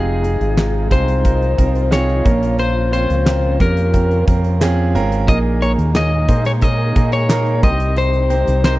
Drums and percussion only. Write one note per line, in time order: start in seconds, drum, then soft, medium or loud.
0.24 closed hi-hat medium
0.41 closed hi-hat soft
0.57 snare medium
0.57 clap medium
0.57 closed hi-hat medium
0.91 kick medium
0.91 closed hi-hat medium
1.08 closed hi-hat medium
1.25 kick medium
1.25 closed hi-hat medium
1.42 closed hi-hat soft
1.58 kick medium
1.58 closed hi-hat medium
1.75 closed hi-hat soft
1.92 snare medium
1.92 clap medium
1.92 closed hi-hat medium
2.09 closed hi-hat soft
2.26 kick medium
2.26 closed hi-hat medium
2.43 closed hi-hat medium
2.59 closed hi-hat medium
2.93 closed hi-hat medium
3.10 closed hi-hat soft
3.26 snare medium
3.26 clap medium
3.26 closed hi-hat medium
3.60 kick medium
3.60 closed hi-hat medium
3.77 closed hi-hat medium
3.94 kick medium
3.94 closed hi-hat medium
4.11 closed hi-hat soft
4.28 kick medium
4.28 closed hi-hat medium
4.44 closed hi-hat soft
4.61 snare loud
4.61 clap medium
4.61 closed hi-hat medium
4.96 closed hi-hat medium
5.12 closed hi-hat medium
5.28 kick medium
5.28 closed hi-hat medium
5.62 closed hi-hat medium
5.79 closed hi-hat soft
5.95 snare loud
5.95 clap medium
5.95 closed hi-hat medium
6.28 kick medium
6.28 closed hi-hat medium
6.45 snare soft
6.45 closed hi-hat medium
6.62 kick medium
6.62 closed hi-hat medium
6.96 kick medium
6.96 closed hi-hat medium
7.12 closed hi-hat soft
7.29 snare medium
7.29 clap medium
7.29 closed hi-hat medium
7.46 closed hi-hat soft
7.63 kick medium
7.63 closed hi-hat medium
7.80 closed hi-hat medium
7.96 closed hi-hat medium
8.14 closed hi-hat soft
8.30 closed hi-hat medium
8.47 closed hi-hat medium
8.64 snare medium
8.64 clap medium
8.64 closed hi-hat medium